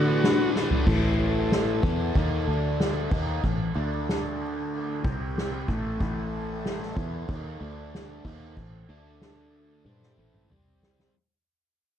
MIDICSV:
0, 0, Header, 1, 7, 480
1, 0, Start_track
1, 0, Tempo, 641711
1, 652, Time_signature, 4, 2, 24, 8
1, 8961, End_track
2, 0, Start_track
2, 0, Title_t, "Harmonium"
2, 0, Program_c, 0, 20
2, 0, Note_on_c, 0, 74, 70
2, 0, Note_on_c, 0, 78, 71
2, 0, Note_on_c, 0, 81, 79
2, 0, Note_on_c, 0, 83, 85
2, 622, Note_off_c, 0, 83, 0
2, 625, Note_off_c, 0, 74, 0
2, 633, Note_off_c, 0, 81, 0
2, 637, Note_off_c, 0, 78, 0
2, 644, Note_on_c, 0, 81, 94
2, 646, Note_on_c, 0, 69, 84
2, 646, Note_on_c, 0, 84, 77
2, 1836, Note_off_c, 0, 84, 0
2, 1843, Note_on_c, 0, 74, 68
2, 1846, Note_on_c, 0, 62, 76
2, 2311, Note_off_c, 0, 69, 0
2, 2322, Note_off_c, 0, 74, 0
2, 2323, Note_off_c, 0, 62, 0
2, 2328, Note_on_c, 0, 69, 69
2, 2330, Note_on_c, 0, 72, 64
2, 2784, Note_off_c, 0, 69, 0
2, 2796, Note_on_c, 0, 69, 68
2, 2800, Note_on_c, 0, 62, 69
2, 2800, Note_on_c, 0, 74, 72
2, 2806, Note_off_c, 0, 72, 0
2, 3737, Note_off_c, 0, 81, 0
2, 3754, Note_off_c, 0, 69, 0
2, 3756, Note_off_c, 0, 62, 0
2, 3756, Note_off_c, 0, 74, 0
2, 3768, Note_on_c, 0, 67, 68
2, 3771, Note_on_c, 0, 72, 70
2, 3771, Note_on_c, 0, 79, 88
2, 3773, Note_on_c, 0, 60, 71
2, 4245, Note_off_c, 0, 67, 0
2, 4246, Note_off_c, 0, 72, 0
2, 4247, Note_off_c, 0, 60, 0
2, 4247, Note_off_c, 0, 79, 0
2, 4254, Note_on_c, 0, 84, 88
2, 4255, Note_on_c, 0, 69, 73
2, 5680, Note_off_c, 0, 84, 0
2, 5687, Note_on_c, 0, 57, 76
2, 5688, Note_on_c, 0, 62, 66
2, 5688, Note_on_c, 0, 74, 81
2, 6149, Note_off_c, 0, 69, 0
2, 6160, Note_on_c, 0, 69, 73
2, 6161, Note_on_c, 0, 72, 83
2, 6163, Note_on_c, 0, 60, 78
2, 6166, Note_off_c, 0, 57, 0
2, 6166, Note_off_c, 0, 62, 0
2, 6166, Note_off_c, 0, 74, 0
2, 6643, Note_off_c, 0, 72, 0
2, 6644, Note_off_c, 0, 60, 0
2, 6650, Note_on_c, 0, 62, 68
2, 6651, Note_on_c, 0, 57, 71
2, 6658, Note_on_c, 0, 74, 82
2, 7357, Note_off_c, 0, 69, 0
2, 7366, Note_off_c, 0, 57, 0
2, 7366, Note_off_c, 0, 62, 0
2, 7370, Note_off_c, 0, 74, 0
2, 7387, Note_on_c, 0, 60, 78
2, 7387, Note_on_c, 0, 64, 67
2, 7387, Note_on_c, 0, 69, 63
2, 7388, Note_on_c, 0, 72, 77
2, 7851, Note_off_c, 0, 72, 0
2, 7857, Note_off_c, 0, 64, 0
2, 7857, Note_off_c, 0, 69, 0
2, 7860, Note_on_c, 0, 55, 70
2, 7860, Note_on_c, 0, 67, 61
2, 7863, Note_on_c, 0, 72, 80
2, 8333, Note_off_c, 0, 60, 0
2, 8334, Note_off_c, 0, 55, 0
2, 8334, Note_off_c, 0, 67, 0
2, 8335, Note_off_c, 0, 72, 0
2, 8961, End_track
3, 0, Start_track
3, 0, Title_t, "Transistor combo organ"
3, 0, Program_c, 1, 18
3, 0, Note_on_c, 1, 66, 81
3, 380, Note_off_c, 1, 66, 0
3, 8961, End_track
4, 0, Start_track
4, 0, Title_t, "Distorted electric guitar"
4, 0, Program_c, 2, 30
4, 0, Note_on_c, 2, 50, 75
4, 0, Note_on_c, 2, 57, 75
4, 0, Note_on_c, 2, 62, 80
4, 161, Note_off_c, 2, 50, 0
4, 168, Note_off_c, 2, 57, 0
4, 170, Note_on_c, 2, 50, 94
4, 177, Note_off_c, 2, 62, 0
4, 177, Note_on_c, 2, 57, 101
4, 186, Note_on_c, 2, 62, 108
4, 286, Note_off_c, 2, 62, 0
4, 295, Note_on_c, 2, 62, 74
4, 301, Note_off_c, 2, 57, 0
4, 310, Note_on_c, 2, 57, 61
4, 398, Note_off_c, 2, 50, 0
4, 407, Note_on_c, 2, 50, 72
4, 409, Note_off_c, 2, 57, 0
4, 417, Note_off_c, 2, 62, 0
4, 418, Note_on_c, 2, 57, 84
4, 426, Note_on_c, 2, 62, 93
4, 522, Note_off_c, 2, 62, 0
4, 531, Note_on_c, 2, 62, 73
4, 538, Note_off_c, 2, 57, 0
4, 547, Note_on_c, 2, 57, 62
4, 635, Note_off_c, 2, 50, 0
4, 637, Note_off_c, 2, 62, 0
4, 645, Note_off_c, 2, 57, 0
4, 648, Note_on_c, 2, 45, 93
4, 652, Note_on_c, 2, 52, 89
4, 655, Note_on_c, 2, 57, 92
4, 1362, Note_off_c, 2, 45, 0
4, 1362, Note_off_c, 2, 52, 0
4, 1366, Note_off_c, 2, 57, 0
4, 1371, Note_on_c, 2, 52, 82
4, 1373, Note_on_c, 2, 59, 93
4, 1378, Note_on_c, 2, 64, 94
4, 1604, Note_off_c, 2, 52, 0
4, 1605, Note_off_c, 2, 59, 0
4, 1607, Note_off_c, 2, 64, 0
4, 1609, Note_on_c, 2, 51, 86
4, 1614, Note_on_c, 2, 58, 95
4, 1619, Note_on_c, 2, 63, 91
4, 1848, Note_off_c, 2, 51, 0
4, 1848, Note_on_c, 2, 50, 94
4, 1852, Note_off_c, 2, 58, 0
4, 1852, Note_on_c, 2, 57, 97
4, 1857, Note_off_c, 2, 63, 0
4, 1857, Note_on_c, 2, 62, 105
4, 2322, Note_off_c, 2, 50, 0
4, 2324, Note_off_c, 2, 57, 0
4, 2326, Note_on_c, 2, 51, 90
4, 2327, Note_off_c, 2, 62, 0
4, 2331, Note_on_c, 2, 58, 99
4, 2334, Note_on_c, 2, 63, 112
4, 2561, Note_off_c, 2, 51, 0
4, 2563, Note_off_c, 2, 58, 0
4, 2564, Note_on_c, 2, 45, 63
4, 2565, Note_off_c, 2, 63, 0
4, 2566, Note_on_c, 2, 52, 69
4, 2759, Note_off_c, 2, 45, 0
4, 2760, Note_off_c, 2, 52, 0
4, 2804, Note_on_c, 2, 50, 96
4, 2808, Note_on_c, 2, 57, 92
4, 2812, Note_on_c, 2, 62, 99
4, 3760, Note_off_c, 2, 50, 0
4, 3762, Note_off_c, 2, 57, 0
4, 3764, Note_off_c, 2, 62, 0
4, 3767, Note_on_c, 2, 48, 84
4, 3772, Note_on_c, 2, 55, 92
4, 3775, Note_on_c, 2, 60, 101
4, 4242, Note_off_c, 2, 48, 0
4, 4245, Note_off_c, 2, 55, 0
4, 4246, Note_off_c, 2, 60, 0
4, 4252, Note_on_c, 2, 45, 98
4, 4255, Note_on_c, 2, 52, 93
4, 4259, Note_on_c, 2, 57, 100
4, 4481, Note_off_c, 2, 45, 0
4, 4484, Note_off_c, 2, 52, 0
4, 4488, Note_off_c, 2, 57, 0
4, 4490, Note_on_c, 2, 45, 91
4, 4493, Note_on_c, 2, 52, 94
4, 4497, Note_on_c, 2, 57, 103
4, 5195, Note_off_c, 2, 52, 0
4, 5201, Note_off_c, 2, 45, 0
4, 5204, Note_on_c, 2, 52, 90
4, 5207, Note_off_c, 2, 57, 0
4, 5209, Note_on_c, 2, 59, 95
4, 5210, Note_on_c, 2, 64, 99
4, 5441, Note_off_c, 2, 52, 0
4, 5444, Note_off_c, 2, 59, 0
4, 5444, Note_off_c, 2, 64, 0
4, 5446, Note_on_c, 2, 51, 86
4, 5448, Note_on_c, 2, 58, 92
4, 5453, Note_on_c, 2, 63, 98
4, 5682, Note_off_c, 2, 51, 0
4, 5683, Note_off_c, 2, 58, 0
4, 5686, Note_off_c, 2, 63, 0
4, 5687, Note_on_c, 2, 50, 88
4, 5690, Note_on_c, 2, 57, 96
4, 5694, Note_on_c, 2, 62, 106
4, 6163, Note_off_c, 2, 50, 0
4, 6165, Note_off_c, 2, 57, 0
4, 6167, Note_off_c, 2, 62, 0
4, 6170, Note_on_c, 2, 51, 95
4, 6173, Note_on_c, 2, 58, 99
4, 6175, Note_on_c, 2, 63, 100
4, 6405, Note_off_c, 2, 51, 0
4, 6406, Note_off_c, 2, 58, 0
4, 6407, Note_off_c, 2, 63, 0
4, 6410, Note_on_c, 2, 45, 62
4, 6413, Note_on_c, 2, 52, 74
4, 6604, Note_off_c, 2, 45, 0
4, 6606, Note_off_c, 2, 52, 0
4, 6647, Note_on_c, 2, 50, 96
4, 6649, Note_on_c, 2, 57, 91
4, 6653, Note_on_c, 2, 62, 102
4, 7364, Note_off_c, 2, 50, 0
4, 7364, Note_off_c, 2, 62, 0
4, 7366, Note_off_c, 2, 57, 0
4, 7372, Note_on_c, 2, 55, 89
4, 7373, Note_on_c, 2, 62, 92
4, 7378, Note_on_c, 2, 67, 102
4, 7607, Note_off_c, 2, 55, 0
4, 7607, Note_off_c, 2, 62, 0
4, 7610, Note_off_c, 2, 67, 0
4, 7615, Note_on_c, 2, 45, 87
4, 7620, Note_on_c, 2, 52, 93
4, 7620, Note_on_c, 2, 57, 91
4, 7849, Note_off_c, 2, 45, 0
4, 7851, Note_off_c, 2, 52, 0
4, 7851, Note_off_c, 2, 57, 0
4, 7854, Note_on_c, 2, 48, 88
4, 7859, Note_on_c, 2, 55, 101
4, 7862, Note_on_c, 2, 60, 102
4, 8329, Note_off_c, 2, 48, 0
4, 8331, Note_off_c, 2, 55, 0
4, 8332, Note_off_c, 2, 60, 0
4, 8961, End_track
5, 0, Start_track
5, 0, Title_t, "Tanpura"
5, 0, Program_c, 3, 104
5, 0, Note_on_c, 3, 45, 68
5, 0, Note_on_c, 3, 57, 68
5, 51, Note_on_c, 3, 52, 68
5, 516, Note_on_c, 3, 54, 64
5, 3690, Note_off_c, 3, 57, 0
5, 4946, Note_off_c, 3, 45, 0
5, 5399, Note_off_c, 3, 52, 0
5, 5581, Note_off_c, 3, 54, 0
5, 8961, End_track
6, 0, Start_track
6, 0, Title_t, "Fingered electric bass"
6, 0, Program_c, 4, 33
6, 0, Note_on_c, 4, 50, 92
6, 531, Note_off_c, 4, 50, 0
6, 651, Note_on_c, 4, 33, 92
6, 1341, Note_off_c, 4, 33, 0
6, 1370, Note_on_c, 4, 40, 96
6, 1593, Note_off_c, 4, 40, 0
6, 1611, Note_on_c, 4, 39, 97
6, 1834, Note_off_c, 4, 39, 0
6, 1851, Note_on_c, 4, 38, 98
6, 2301, Note_off_c, 4, 38, 0
6, 2329, Note_on_c, 4, 39, 101
6, 2553, Note_off_c, 4, 39, 0
6, 2569, Note_on_c, 4, 33, 77
6, 2793, Note_off_c, 4, 33, 0
6, 2809, Note_on_c, 4, 38, 91
6, 3740, Note_off_c, 4, 38, 0
6, 3775, Note_on_c, 4, 36, 100
6, 4223, Note_off_c, 4, 36, 0
6, 4252, Note_on_c, 4, 33, 93
6, 4475, Note_off_c, 4, 33, 0
6, 4493, Note_on_c, 4, 33, 96
6, 5183, Note_off_c, 4, 33, 0
6, 5209, Note_on_c, 4, 40, 98
6, 5434, Note_off_c, 4, 40, 0
6, 5450, Note_on_c, 4, 39, 98
6, 5675, Note_off_c, 4, 39, 0
6, 5690, Note_on_c, 4, 38, 98
6, 6142, Note_off_c, 4, 38, 0
6, 6168, Note_on_c, 4, 39, 89
6, 6394, Note_off_c, 4, 39, 0
6, 6408, Note_on_c, 4, 33, 80
6, 6634, Note_off_c, 4, 33, 0
6, 6648, Note_on_c, 4, 38, 96
6, 7342, Note_off_c, 4, 38, 0
6, 7365, Note_on_c, 4, 43, 98
6, 7594, Note_off_c, 4, 43, 0
6, 7611, Note_on_c, 4, 33, 90
6, 7837, Note_off_c, 4, 33, 0
6, 7857, Note_on_c, 4, 36, 85
6, 8308, Note_off_c, 4, 36, 0
6, 8961, End_track
7, 0, Start_track
7, 0, Title_t, "Drums"
7, 169, Note_on_c, 9, 51, 99
7, 178, Note_on_c, 9, 38, 109
7, 244, Note_off_c, 9, 51, 0
7, 253, Note_off_c, 9, 38, 0
7, 415, Note_on_c, 9, 38, 62
7, 490, Note_off_c, 9, 38, 0
7, 527, Note_on_c, 9, 43, 89
7, 602, Note_off_c, 9, 43, 0
7, 649, Note_on_c, 9, 49, 108
7, 649, Note_on_c, 9, 57, 75
7, 650, Note_on_c, 9, 36, 100
7, 723, Note_off_c, 9, 49, 0
7, 723, Note_off_c, 9, 57, 0
7, 724, Note_off_c, 9, 36, 0
7, 888, Note_on_c, 9, 57, 60
7, 963, Note_off_c, 9, 57, 0
7, 1127, Note_on_c, 9, 57, 78
7, 1136, Note_on_c, 9, 38, 98
7, 1201, Note_off_c, 9, 57, 0
7, 1210, Note_off_c, 9, 38, 0
7, 1369, Note_on_c, 9, 57, 60
7, 1370, Note_on_c, 9, 36, 105
7, 1443, Note_off_c, 9, 57, 0
7, 1445, Note_off_c, 9, 36, 0
7, 1611, Note_on_c, 9, 36, 103
7, 1612, Note_on_c, 9, 57, 88
7, 1686, Note_off_c, 9, 36, 0
7, 1686, Note_off_c, 9, 57, 0
7, 1850, Note_on_c, 9, 57, 66
7, 1924, Note_off_c, 9, 57, 0
7, 2087, Note_on_c, 9, 57, 89
7, 2096, Note_on_c, 9, 38, 114
7, 2162, Note_off_c, 9, 57, 0
7, 2171, Note_off_c, 9, 38, 0
7, 2329, Note_on_c, 9, 57, 96
7, 2330, Note_on_c, 9, 36, 110
7, 2404, Note_off_c, 9, 36, 0
7, 2404, Note_off_c, 9, 57, 0
7, 2571, Note_on_c, 9, 36, 86
7, 2572, Note_on_c, 9, 57, 75
7, 2646, Note_off_c, 9, 36, 0
7, 2647, Note_off_c, 9, 57, 0
7, 2814, Note_on_c, 9, 57, 52
7, 2888, Note_off_c, 9, 57, 0
7, 3052, Note_on_c, 9, 57, 73
7, 3061, Note_on_c, 9, 38, 113
7, 3127, Note_off_c, 9, 57, 0
7, 3136, Note_off_c, 9, 38, 0
7, 3292, Note_on_c, 9, 57, 57
7, 3367, Note_off_c, 9, 57, 0
7, 3537, Note_on_c, 9, 57, 74
7, 3612, Note_off_c, 9, 57, 0
7, 3773, Note_on_c, 9, 36, 115
7, 3777, Note_on_c, 9, 57, 63
7, 3848, Note_off_c, 9, 36, 0
7, 3852, Note_off_c, 9, 57, 0
7, 4014, Note_on_c, 9, 57, 86
7, 4023, Note_on_c, 9, 38, 115
7, 4089, Note_off_c, 9, 57, 0
7, 4098, Note_off_c, 9, 38, 0
7, 4251, Note_on_c, 9, 36, 97
7, 4254, Note_on_c, 9, 57, 63
7, 4326, Note_off_c, 9, 36, 0
7, 4329, Note_off_c, 9, 57, 0
7, 4492, Note_on_c, 9, 36, 105
7, 4497, Note_on_c, 9, 57, 78
7, 4566, Note_off_c, 9, 36, 0
7, 4571, Note_off_c, 9, 57, 0
7, 4735, Note_on_c, 9, 57, 59
7, 4809, Note_off_c, 9, 57, 0
7, 4969, Note_on_c, 9, 57, 76
7, 4978, Note_on_c, 9, 38, 116
7, 5044, Note_off_c, 9, 57, 0
7, 5053, Note_off_c, 9, 38, 0
7, 5103, Note_on_c, 9, 38, 34
7, 5178, Note_off_c, 9, 38, 0
7, 5210, Note_on_c, 9, 36, 103
7, 5214, Note_on_c, 9, 57, 63
7, 5285, Note_off_c, 9, 36, 0
7, 5288, Note_off_c, 9, 57, 0
7, 5451, Note_on_c, 9, 36, 108
7, 5457, Note_on_c, 9, 57, 90
7, 5526, Note_off_c, 9, 36, 0
7, 5532, Note_off_c, 9, 57, 0
7, 5700, Note_on_c, 9, 57, 68
7, 5774, Note_off_c, 9, 57, 0
7, 5935, Note_on_c, 9, 57, 80
7, 5944, Note_on_c, 9, 38, 118
7, 6010, Note_off_c, 9, 57, 0
7, 6019, Note_off_c, 9, 38, 0
7, 6170, Note_on_c, 9, 36, 99
7, 6174, Note_on_c, 9, 57, 105
7, 6245, Note_off_c, 9, 36, 0
7, 6249, Note_off_c, 9, 57, 0
7, 6409, Note_on_c, 9, 36, 89
7, 6409, Note_on_c, 9, 57, 78
7, 6484, Note_off_c, 9, 36, 0
7, 6484, Note_off_c, 9, 57, 0
7, 6648, Note_on_c, 9, 57, 59
7, 6723, Note_off_c, 9, 57, 0
7, 6883, Note_on_c, 9, 57, 74
7, 6892, Note_on_c, 9, 38, 108
7, 6958, Note_off_c, 9, 57, 0
7, 6967, Note_off_c, 9, 38, 0
7, 7125, Note_on_c, 9, 57, 60
7, 7200, Note_off_c, 9, 57, 0
7, 7370, Note_on_c, 9, 48, 64
7, 7445, Note_off_c, 9, 48, 0
7, 7500, Note_on_c, 9, 38, 61
7, 7575, Note_off_c, 9, 38, 0
7, 7733, Note_on_c, 9, 47, 60
7, 7808, Note_off_c, 9, 47, 0
7, 7854, Note_on_c, 9, 45, 90
7, 7929, Note_off_c, 9, 45, 0
7, 8100, Note_on_c, 9, 38, 97
7, 8175, Note_off_c, 9, 38, 0
7, 8224, Note_on_c, 9, 38, 93
7, 8298, Note_off_c, 9, 38, 0
7, 8961, End_track
0, 0, End_of_file